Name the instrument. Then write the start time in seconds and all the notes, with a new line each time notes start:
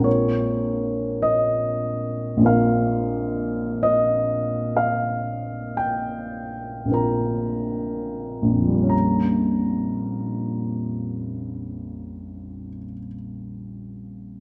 grand piano
Already playing: A#1
0.00 A#3 C4 F4
0.04 A#4 C#5
1.22 D#5
2.37 A#1 A#3 C4
2.42 F4 A#4 F5
3.83 D#5
4.77 F5
5.77 G5
6.85 A#1 A#3 C4
6.91 F4 A#4 A#5
8.42 A#1
8.51 F2
8.59 F3
8.67 G3
8.74 A#3
8.82 C#4
8.89 A#5